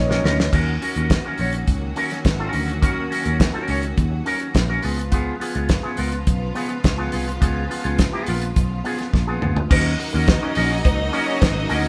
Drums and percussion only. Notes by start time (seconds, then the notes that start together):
0.11 snare
0.25 snare
0.40 snare
0.53 kick, crash
0.82 open hi-hat
0.96 closed hi-hat
1.10 kick, snare, closed hi-hat
1.38 open hi-hat
1.53 closed hi-hat
1.67 kick, closed hi-hat
1.96 open hi-hat
2.10 snare, closed hi-hat
2.25 kick, snare, closed hi-hat
2.53 open hi-hat
2.70 closed hi-hat
2.83 kick, closed hi-hat
3.12 open hi-hat
3.25 closed hi-hat
3.40 kick, snare, closed hi-hat
3.68 open hi-hat
3.83 closed hi-hat
3.98 kick, closed hi-hat
4.26 open hi-hat
4.40 closed hi-hat
4.54 kick, snare, closed hi-hat
4.83 open hi-hat
4.99 closed hi-hat
5.12 kick, closed hi-hat
5.41 open hi-hat
5.55 closed hi-hat
5.69 kick, snare, closed hi-hat
5.97 open hi-hat
6.12 closed hi-hat
6.27 kick, closed hi-hat
6.55 open hi-hat
6.69 closed hi-hat
6.84 kick, snare, closed hi-hat
7.12 open hi-hat
7.29 closed hi-hat
7.42 kick, closed hi-hat
7.71 open hi-hat
7.84 closed hi-hat
7.98 kick, snare, closed hi-hat
8.26 open hi-hat
8.42 closed hi-hat
8.56 kick, closed hi-hat
8.85 open hi-hat
8.98 snare, closed hi-hat
9.13 kick, snare
9.42 mid tom
9.57 floor tom
9.71 kick, crash, cowbell
10.00 open hi-hat
10.28 kick, snare, closed hi-hat, cowbell
10.55 open hi-hat
10.85 kick, closed hi-hat, cowbell
11.13 open hi-hat
11.41 kick, snare, closed hi-hat, cowbell
11.69 open hi-hat